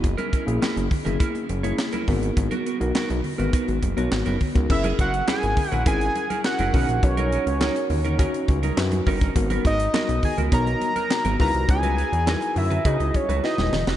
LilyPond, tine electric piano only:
\new Staff \with { instrumentName = "Tine electric piano" } { \time 4/4 \key fis \mixolydian \tempo 4 = 103 r8. <ais cis' e' gis'>8. r16 <ais cis' e' gis'>8. r16 <ais cis' e' gis'>8. <b dis' fis' ais'>8~ | <b dis' fis' ais'>8 r16 <b dis' fis' ais'>8. r16 <b dis' fis' b'>8. r16 <b dis' fis' cis''>8. r16 <b dis' fis' ais'>16 | <cis' e' gis' ais'>8. r16 <cis' e' gis' ais'>8. r16 <cis' e' gis' ais'>8. r16 <cis' e' gis' ais'>8 <cis' dis' fis' ais'>8~ | <cis' dis' fis' ais'>8. r16 <cis' dis' fis' ais'>8. r16 <cis' dis' fis' cis''>8. r16 <cis' dis' fis' b'>8. r16 |
<b dis' fis' ais'>8. r16 <b dis' fis' ais'>8. r16 <b dis' fis' cis''>8. r16 <b dis' fis' ais'>8 <dis' e' fis' b'>8~ | <dis' e' fis' b'>8. r16 <dis' e' fis' ais'>8. r16 <dis' e' fis' gis'>8. r16 <dis' e' fis' b'>8. r16 | }